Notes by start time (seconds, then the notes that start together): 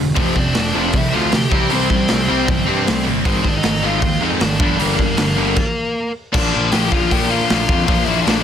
Already playing: G2 D3
0.00 E1
0.15 F1 F2 C3 F3 A3 C4, kick, open hi-hat
0.20 C5
0.34 F2 C3 F3 A3 C4 D4, kick
0.39 D5
0.53 F1 F2 C3 F3 A3 C4, snare, open hi-hat
0.73 F1 F2 C3 F3 A3 C4
0.92 C2 F2 C3 F3 A3 C4 E4, kick, open hi-hat
0.97 E5
1.09 F2 C3 F3 A3 E5
1.13 D2 C4 F4 F5
1.29 D2 F2 C3 F3 A3 C4, snare, open hi-hat
1.33 G4 G5
1.52 C2 C3 G3 C4 E4, kick
1.69 C2 C3 G3 C4 E4, open hi-hat
1.75 C5
1.89 C2 C3 G3 C4 E4, kick
2.08 C3 G3 C4 E4, snare, open hi-hat
2.12 C2
2.26 C3 G3 C4 E4
2.30 C2
2.47 G1 C3 G3 C4 E4, kick, open hi-hat
2.67 G2 C3 G3 C4 E4
2.85 C3 G3 C4 E4, snare, open hi-hat
2.89 C2
3.05 G1 C3 G3 C4 E4
3.24 G#1 G#2 D#3 G#3 C4 D#4 C5, kick, open hi-hat
3.42 G#2 D#3 G#3 C4 D#4, kick
3.47 D4 D5
3.56 D#4 D#5
3.63 G#1 G#2 D#3 G#3 C4 D#4, snare, open hi-hat
3.83 G#1 G#2 D#3 G#3 C4 D#4 F4 F5
4.02 D#2 G#2 D#3 G#3 C4 D#4, kick, open hi-hat
4.21 F2 G#2 D#3 G#3 C4 D#4 D#5
4.40 G#1 G#2 D#3 G#3 C4 D4 D#4 D5, snare, open hi-hat
4.59 G1 G2 D3 G3 A#3 D4, kick
4.77 G1 G2 D3 G3 A#3 D4, open hi-hat
4.82 A#4
4.96 G1 G2 D3 G3 A#3 D4, kick
5.16 G1 G2 D3 G3 A#3 D4, snare, open hi-hat
5.35 G1 G2 D3 G3 A#3 D4
5.56 kick, crash
6.32 A#1 A#2 D3 F3 A#3 D4 D5, kick, crash
6.53 A#1 A#2 F3 A#3
6.72 A#1 A#2 F3 A#3 G4 G5, snare, open hi-hat
6.91 A#1 A#2 F3 A#3 F4 F5, kick
7.10 A#2 D3 F3 A#3 D4 G4 G5, kick, open hi-hat
7.30 A#2 F3 A#3 F4 F5
7.50 A#1 A#2 F3 A#3, snare, open hi-hat
7.69 F2 A#2 F3 A#3, kick
7.85 A#1 A#2 D3 F3 A#3 D4 F4 F5, kick, open hi-hat
8.04 A#1 A#2 F3 E4 E5
8.09 A#3
8.21 D4 D5
8.26 A#1 A#2 F3 A#3, snare, open hi-hat